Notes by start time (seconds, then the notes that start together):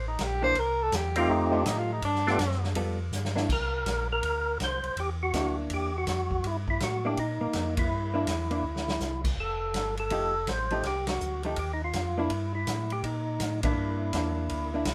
Already playing: A1
0.08 D#4
0.19 A#1, kick, snare, hi-hat pedal, ride
0.23 G4
0.42 E3 A#3 D4 C5
0.55 C2 A#4, kick, ride
0.82 A4
0.92 E2 G4, kick, snare, hi-hat pedal, ride
1.16 A3 C4 D#4 F4 G4, ride
1.28 F2 D#4, kick
1.52 F3 A3 D4 D#4 G4
1.65 A2 D#4, kick, snare, hi-hat pedal, ride
1.78 F4
1.92 D#4
2.02 G2 D4, kick, ride
2.15 snare
2.27 A3 B3 D4 F4 G4, snare
2.39 F#2, kick, snare, hi-hat pedal, ride
2.51 snare
2.64 snare
2.75 F2 G3 B3 F4 A4, kick, ride
3.12 G2, snare, hi-hat pedal
3.25 snare
3.36 A#3 D4 E4, snare
3.49 C2 A#4, kick, crash
3.86 A#1, kick, snare, hi-hat pedal, ride
4.13 A#4
4.23 D2, kick, ride
4.60 C2, kick, snare, hi-hat pedal, ride
4.64 C5
4.83 C2, ride
4.96 E2 G4, kick, ride
5.23 F#4
5.33 D2 A#3 D4 E4, kick, snare, hi-hat pedal, ride
5.70 E2 G4, kick, ride
5.98 F#4
6.07 F2, kick, snare, hi-hat pedal, ride
6.31 kick
6.43 G2 E4, kick, ride
6.68 E4, kick
6.80 A2 F#4, kick, snare, hi-hat pedal, ride
7.05 A#3 D4 E4 G4
7.17 A#2 D#4, kick, ride
7.41 A#2 A#3
7.53 F2, kick, snare, hi-hat pedal, ride
7.77 E4, kick, ride
7.90 G2
8.14 A#3 D4 E4
8.27 E2, kick, snare, hi-hat pedal, ride
8.51 A#3 D4 E4, ride
8.64 D2
8.76 snare
8.88 snare
9.00 C2, snare, hi-hat pedal
9.24 kick, crash
9.37 F1 A4, kick
9.74 G1, kick, snare, hi-hat pedal, ride
9.97 A4, ride
10.10 F1 F3 A3 D#4 G4, kick, ride
10.47 A1 C5, kick, snare, hi-hat pedal, ride
10.70 F3 A3 D#4 G4, ride
10.83 C2 G4, kick, snare, ride
11.07 F#4, snare, ride
11.20 D2, hi-hat pedal
11.43 F3 A3 D#4 G4, ride
11.56 D#2 G4, kick, ride
11.73 D#4
11.84 F4
11.93 F2, kick, snare, hi-hat pedal, ride
12.18 A#3 D4 E4
12.30 G2, kick, ride
12.55 E4
12.67 A2, kick, snare, hi-hat pedal, ride
12.90 G4, ride
13.03 A#2 D#4, kick, ride
13.39 A2, kick, snare, hi-hat pedal, ride
13.63 A#3 D4 E4, kick, ride
13.76 G2
14.13 E2 A#3 D4 E4, kick, snare, hi-hat pedal, ride
14.49 D2, kick, ride
14.74 A#3 D4 E4
14.85 C2, kick, snare, hi-hat pedal, ride